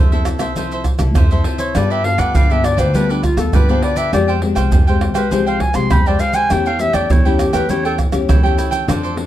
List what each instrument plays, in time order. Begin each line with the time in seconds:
Already playing: upright bass F2, nylon-string guitar C3, cavaquinho F4 A4 C5 E5
0.12 nylon-string guitar C4 E4 A4, cavaquinho A4 C5 E5, pandeiro, maracas
0.25 pandeiro, tamborim, maracas
0.39 upright bass C2, nylon-string guitar C4 E4 A4, cavaquinho A4 C5 E5, pandeiro, tamborim, maracas
0.56 nylon-string guitar F3 C4 E4 A4, cavaquinho F4 A4 C5 E5, pandeiro, maracas, surdo
0.71 cavaquinho A4 C5 E5, pandeiro, maracas
0.84 muted cavaquinho stroke, pandeiro, tamborim, maracas, surdo
0.99 upright bass C2, nylon-string guitar C4 E4 A4, pandeiro, tamborim, maracas
1.15 upright bass F2, nylon-string guitar C3, cavaquinho F4 A4 C5 E5, pandeiro, tamborim, maracas, surdo
1.31 nylon-string guitar C4 E4 A4, cavaquinho A4 C5 E5, pandeiro, maracas
1.44 cavaquinho F4 A4 C5 E5, pandeiro
1.58 cavaquinho A4 C5 E5, clarinet C#5, pandeiro, maracas
1.75 upright bass G2, nylon-string guitar G3 B3 F4 A4, cavaquinho F4 G4 B4 D5, clarinet D5, pandeiro, tamborim, maracas, surdo
1.90 cavaquinho G4 B4 D5, clarinet E5, pandeiro, maracas
2.04 nylon-string guitar B3 F4 A4, clarinet F5, muted cavaquinho stroke, pandeiro
2.18 upright bass D2, cavaquinho G4 B4 D5, clarinet F#5, pandeiro, tamborim, maracas
2.34 upright bass G2, nylon-string guitar D3, cavaquinho F4 G4 B4 D5, clarinet F5, pandeiro, maracas, surdo
2.50 nylon-string guitar B3 F4 A4, cavaquinho G4 B4 D5, clarinet E5, pandeiro, maracas
2.64 clarinet D5, pandeiro, tamborim, maracas
2.77 upright bass D2, nylon-string guitar B3 F4 A4, cavaquinho G4 B4 D5, clarinet C5, pandeiro, tamborim, maracas
2.93 nylon-string guitar G3 B3 F4 A4, cavaquinho F4 G4 B4 D5, clarinet B4, pandeiro, maracas, surdo
3.09 clarinet D4, cavaquinho G4 B4 D5, pandeiro, maracas
3.23 clarinet F4, muted cavaquinho stroke, pandeiro, tamborim, maracas, surdo
3.37 upright bass D2, nylon-string guitar B3 F4 A4, clarinet A4, pandeiro, tamborim, maracas
3.53 upright bass G2, nylon-string guitar D3, cavaquinho F4 G4 B4 D5, clarinet B4, pandeiro, tamborim, maracas, surdo
3.69 nylon-string guitar B3 F4 A4, cavaquinho G4 B4 D5, clarinet C5, pandeiro, maracas
3.82 cavaquinho F4 G4 B4 D5, clarinet D5, pandeiro
3.96 cavaquinho G4 B4 D5, clarinet E5, pandeiro, maracas
4.12 upright bass F2, nylon-string guitar F3 G#3 C4 G4, cavaquinho G#4 C5 F5 G5, clarinet D5, pandeiro, tamborim, maracas, surdo
4.28 cavaquinho C5 F5 G5, pandeiro, maracas
4.41 nylon-string guitar G#3 C4 G4, muted cavaquinho stroke, pandeiro
4.55 upright bass C2, cavaquinho C5 F5 G5, pandeiro, tamborim, maracas
4.72 upright bass F2, nylon-string guitar C3, cavaquinho G#4 C5 F5 G5, pandeiro, maracas, surdo
4.87 nylon-string guitar G#3 C4 G4, cavaquinho C5 F5 G5, pandeiro, maracas
5.01 pandeiro, tamborim
5.14 upright bass C2, nylon-string guitar G#3 C4 G4, clarinet B4, cavaquinho C5 F5 G5, pandeiro, tamborim, maracas
5.31 nylon-string guitar F3 G#3 C4 G4, cavaquinho G#4 C5 F5 G5, clarinet C5, pandeiro, maracas, surdo
5.46 cavaquinho C5 F5 G5, clarinet F5, pandeiro, maracas
5.60 clarinet G#5, muted cavaquinho stroke, pandeiro, tamborim, surdo
5.74 upright bass C2, nylon-string guitar G#3 C4 G4, clarinet C6, pandeiro, tamborim, maracas
5.91 upright bass F2, nylon-string guitar C3, cavaquinho G#4 C5 F5 G5, clarinet B5, pandeiro, tamborim, maracas, surdo
6.06 nylon-string guitar G#3 C4 G4, cavaquinho C5 F5 G5, clarinet D5, pandeiro, maracas
6.19 cavaquinho G#4 C5 F5 G5, clarinet F5, pandeiro, maracas
6.33 cavaquinho C5 F5 G5, clarinet G#5, pandeiro, maracas
6.50 upright bass E2, nylon-string guitar E3 A3 C#4 G4, cavaquinho E4 A4 C#5 G5, clarinet G5, pandeiro, tamborim, maracas, surdo
6.66 cavaquinho A4 C#5 G5, clarinet F5, pandeiro, maracas
6.79 nylon-string guitar A3 C#4 G4, clarinet E5, muted cavaquinho stroke, pandeiro, maracas
6.93 upright bass E2, cavaquinho A4 C#5 G5, clarinet D5, pandeiro, tamborim, maracas
7.10 upright bass E2, nylon-string guitar E3, cavaquinho E4 A4 C#5 G5, clarinet C#5, pandeiro, maracas, surdo
7.25 nylon-string guitar A3 C#4 G4, clarinet E4, cavaquinho A4 C#5 G5, pandeiro, maracas
7.39 clarinet G4, pandeiro, tamborim, maracas
7.53 upright bass E2, nylon-string guitar A3 C#4 G4, cavaquinho A4 C#5 G5, clarinet B4, pandeiro, tamborim, maracas
7.69 nylon-string guitar E3 A3 C#4 G4, cavaquinho E4 A4 C#5 G5, clarinet C#5, pandeiro, maracas, surdo
7.85 clarinet A4, cavaquinho A4 C#5 G5, pandeiro, maracas
7.98 muted cavaquinho stroke, pandeiro, tamborim, maracas, surdo
8.12 upright bass E2, nylon-string guitar A3 C#4 G4, pandeiro, tamborim, maracas
8.29 upright bass E2, nylon-string guitar E3, cavaquinho E4 A4 C#5 G5, pandeiro, tamborim, maracas, surdo
8.43 nylon-string guitar A3 C#4 G4, cavaquinho A4 C#5 G5, pandeiro, maracas
8.57 cavaquinho E4 A4 C#5 G5, pandeiro, maracas
8.71 cavaquinho A4 C#5 G5, pandeiro, maracas
8.87 upright bass F2, nylon-string guitar F3 C4 D4 A4, cavaquinho F4 A4 C5 D5, pandeiro, tamborim, maracas, surdo
9.03 cavaquinho A4 C5 D5, pandeiro, maracas
9.17 nylon-string guitar C4 D4 A4, muted cavaquinho stroke, pandeiro